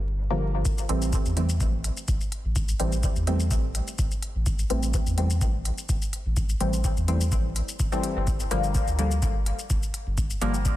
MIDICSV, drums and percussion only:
0, 0, Header, 1, 2, 480
1, 0, Start_track
1, 0, Tempo, 476190
1, 658, Time_signature, 4, 2, 24, 8
1, 10851, End_track
2, 0, Start_track
2, 0, Title_t, "Drums"
2, 658, Note_on_c, 9, 36, 118
2, 659, Note_on_c, 9, 82, 60
2, 759, Note_off_c, 9, 36, 0
2, 759, Note_off_c, 9, 82, 0
2, 786, Note_on_c, 9, 82, 40
2, 886, Note_off_c, 9, 82, 0
2, 899, Note_on_c, 9, 42, 79
2, 999, Note_off_c, 9, 42, 0
2, 1025, Note_on_c, 9, 82, 27
2, 1126, Note_off_c, 9, 82, 0
2, 1138, Note_on_c, 9, 36, 108
2, 1138, Note_on_c, 9, 82, 57
2, 1239, Note_off_c, 9, 36, 0
2, 1239, Note_off_c, 9, 82, 0
2, 1265, Note_on_c, 9, 82, 28
2, 1366, Note_off_c, 9, 82, 0
2, 1378, Note_on_c, 9, 42, 67
2, 1479, Note_off_c, 9, 42, 0
2, 1505, Note_on_c, 9, 82, 38
2, 1606, Note_off_c, 9, 82, 0
2, 1618, Note_on_c, 9, 36, 113
2, 1618, Note_on_c, 9, 82, 62
2, 1719, Note_off_c, 9, 36, 0
2, 1719, Note_off_c, 9, 82, 0
2, 1858, Note_on_c, 9, 42, 79
2, 1959, Note_off_c, 9, 42, 0
2, 1986, Note_on_c, 9, 82, 28
2, 2086, Note_off_c, 9, 82, 0
2, 2098, Note_on_c, 9, 36, 119
2, 2098, Note_on_c, 9, 82, 59
2, 2199, Note_off_c, 9, 36, 0
2, 2199, Note_off_c, 9, 82, 0
2, 2225, Note_on_c, 9, 82, 28
2, 2326, Note_off_c, 9, 82, 0
2, 2338, Note_on_c, 9, 42, 65
2, 2439, Note_off_c, 9, 42, 0
2, 2578, Note_on_c, 9, 36, 119
2, 2578, Note_on_c, 9, 82, 60
2, 2679, Note_off_c, 9, 36, 0
2, 2679, Note_off_c, 9, 82, 0
2, 2705, Note_on_c, 9, 82, 42
2, 2806, Note_off_c, 9, 82, 0
2, 2818, Note_on_c, 9, 42, 79
2, 2919, Note_off_c, 9, 42, 0
2, 2945, Note_on_c, 9, 82, 28
2, 3046, Note_off_c, 9, 82, 0
2, 3058, Note_on_c, 9, 36, 115
2, 3058, Note_on_c, 9, 82, 63
2, 3159, Note_off_c, 9, 36, 0
2, 3159, Note_off_c, 9, 82, 0
2, 3186, Note_on_c, 9, 82, 28
2, 3286, Note_off_c, 9, 82, 0
2, 3298, Note_on_c, 9, 42, 69
2, 3399, Note_off_c, 9, 42, 0
2, 3425, Note_on_c, 9, 82, 39
2, 3526, Note_off_c, 9, 82, 0
2, 3538, Note_on_c, 9, 36, 120
2, 3538, Note_on_c, 9, 82, 64
2, 3639, Note_off_c, 9, 36, 0
2, 3639, Note_off_c, 9, 82, 0
2, 3778, Note_on_c, 9, 42, 84
2, 3879, Note_off_c, 9, 42, 0
2, 3905, Note_on_c, 9, 82, 29
2, 4006, Note_off_c, 9, 82, 0
2, 4018, Note_on_c, 9, 36, 118
2, 4018, Note_on_c, 9, 82, 62
2, 4119, Note_off_c, 9, 36, 0
2, 4119, Note_off_c, 9, 82, 0
2, 4145, Note_on_c, 9, 82, 27
2, 4246, Note_off_c, 9, 82, 0
2, 4258, Note_on_c, 9, 42, 67
2, 4359, Note_off_c, 9, 42, 0
2, 4498, Note_on_c, 9, 36, 122
2, 4498, Note_on_c, 9, 82, 58
2, 4599, Note_off_c, 9, 36, 0
2, 4599, Note_off_c, 9, 82, 0
2, 4625, Note_on_c, 9, 82, 40
2, 4726, Note_off_c, 9, 82, 0
2, 4738, Note_on_c, 9, 42, 86
2, 4839, Note_off_c, 9, 42, 0
2, 4865, Note_on_c, 9, 82, 27
2, 4966, Note_off_c, 9, 82, 0
2, 4978, Note_on_c, 9, 36, 116
2, 4978, Note_on_c, 9, 82, 60
2, 5079, Note_off_c, 9, 36, 0
2, 5079, Note_off_c, 9, 82, 0
2, 5105, Note_on_c, 9, 82, 28
2, 5206, Note_off_c, 9, 82, 0
2, 5219, Note_on_c, 9, 42, 72
2, 5319, Note_off_c, 9, 42, 0
2, 5346, Note_on_c, 9, 82, 39
2, 5446, Note_off_c, 9, 82, 0
2, 5458, Note_on_c, 9, 36, 127
2, 5459, Note_on_c, 9, 82, 62
2, 5559, Note_off_c, 9, 36, 0
2, 5559, Note_off_c, 9, 82, 0
2, 5699, Note_on_c, 9, 42, 83
2, 5799, Note_off_c, 9, 42, 0
2, 5826, Note_on_c, 9, 82, 29
2, 5926, Note_off_c, 9, 82, 0
2, 5938, Note_on_c, 9, 36, 117
2, 5938, Note_on_c, 9, 82, 63
2, 6039, Note_off_c, 9, 36, 0
2, 6039, Note_off_c, 9, 82, 0
2, 6066, Note_on_c, 9, 82, 28
2, 6166, Note_off_c, 9, 82, 0
2, 6179, Note_on_c, 9, 42, 74
2, 6280, Note_off_c, 9, 42, 0
2, 6418, Note_on_c, 9, 36, 120
2, 6418, Note_on_c, 9, 82, 60
2, 6519, Note_off_c, 9, 36, 0
2, 6519, Note_off_c, 9, 82, 0
2, 6545, Note_on_c, 9, 82, 38
2, 6646, Note_off_c, 9, 82, 0
2, 6658, Note_on_c, 9, 42, 85
2, 6759, Note_off_c, 9, 42, 0
2, 6785, Note_on_c, 9, 82, 27
2, 6886, Note_off_c, 9, 82, 0
2, 6898, Note_on_c, 9, 36, 114
2, 6898, Note_on_c, 9, 82, 58
2, 6999, Note_off_c, 9, 36, 0
2, 6999, Note_off_c, 9, 82, 0
2, 7025, Note_on_c, 9, 82, 26
2, 7126, Note_off_c, 9, 82, 0
2, 7138, Note_on_c, 9, 42, 69
2, 7239, Note_off_c, 9, 42, 0
2, 7265, Note_on_c, 9, 82, 37
2, 7366, Note_off_c, 9, 82, 0
2, 7378, Note_on_c, 9, 36, 124
2, 7378, Note_on_c, 9, 82, 59
2, 7479, Note_off_c, 9, 36, 0
2, 7479, Note_off_c, 9, 82, 0
2, 7619, Note_on_c, 9, 42, 86
2, 7720, Note_off_c, 9, 42, 0
2, 7745, Note_on_c, 9, 82, 29
2, 7846, Note_off_c, 9, 82, 0
2, 7858, Note_on_c, 9, 36, 118
2, 7859, Note_on_c, 9, 82, 58
2, 7959, Note_off_c, 9, 36, 0
2, 7959, Note_off_c, 9, 82, 0
2, 7986, Note_on_c, 9, 82, 26
2, 8087, Note_off_c, 9, 82, 0
2, 8099, Note_on_c, 9, 42, 70
2, 8200, Note_off_c, 9, 42, 0
2, 8338, Note_on_c, 9, 36, 121
2, 8339, Note_on_c, 9, 82, 58
2, 8439, Note_off_c, 9, 36, 0
2, 8439, Note_off_c, 9, 82, 0
2, 8466, Note_on_c, 9, 82, 35
2, 8567, Note_off_c, 9, 82, 0
2, 8579, Note_on_c, 9, 42, 76
2, 8679, Note_off_c, 9, 42, 0
2, 8706, Note_on_c, 9, 82, 25
2, 8807, Note_off_c, 9, 82, 0
2, 8818, Note_on_c, 9, 36, 108
2, 8819, Note_on_c, 9, 82, 55
2, 8919, Note_off_c, 9, 36, 0
2, 8920, Note_off_c, 9, 82, 0
2, 8946, Note_on_c, 9, 82, 27
2, 9047, Note_off_c, 9, 82, 0
2, 9059, Note_on_c, 9, 42, 67
2, 9160, Note_off_c, 9, 42, 0
2, 9186, Note_on_c, 9, 82, 36
2, 9287, Note_off_c, 9, 82, 0
2, 9298, Note_on_c, 9, 36, 120
2, 9299, Note_on_c, 9, 82, 58
2, 9399, Note_off_c, 9, 36, 0
2, 9400, Note_off_c, 9, 82, 0
2, 9539, Note_on_c, 9, 42, 84
2, 9640, Note_off_c, 9, 42, 0
2, 9666, Note_on_c, 9, 82, 27
2, 9767, Note_off_c, 9, 82, 0
2, 9778, Note_on_c, 9, 36, 116
2, 9779, Note_on_c, 9, 82, 58
2, 9879, Note_off_c, 9, 36, 0
2, 9879, Note_off_c, 9, 82, 0
2, 9906, Note_on_c, 9, 82, 25
2, 10007, Note_off_c, 9, 82, 0
2, 10019, Note_on_c, 9, 42, 70
2, 10120, Note_off_c, 9, 42, 0
2, 10258, Note_on_c, 9, 36, 116
2, 10259, Note_on_c, 9, 82, 54
2, 10359, Note_off_c, 9, 36, 0
2, 10360, Note_off_c, 9, 82, 0
2, 10386, Note_on_c, 9, 82, 38
2, 10486, Note_off_c, 9, 82, 0
2, 10499, Note_on_c, 9, 42, 80
2, 10599, Note_off_c, 9, 42, 0
2, 10626, Note_on_c, 9, 82, 26
2, 10726, Note_off_c, 9, 82, 0
2, 10738, Note_on_c, 9, 36, 109
2, 10739, Note_on_c, 9, 82, 55
2, 10839, Note_off_c, 9, 36, 0
2, 10840, Note_off_c, 9, 82, 0
2, 10851, End_track
0, 0, End_of_file